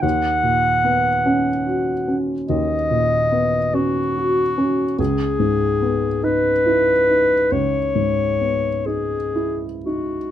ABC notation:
X:1
M:12/8
L:1/8
Q:3/8=48
K:B
V:1 name="Clarinet"
f4- f z d3 F3 | G3 B3 c3 G2 F |]
V:2 name="Grand piano"
D,, A,, B, C F C D,, A,, B, C F C | C,, G,, B, D E D C,, G,, B, D E D |]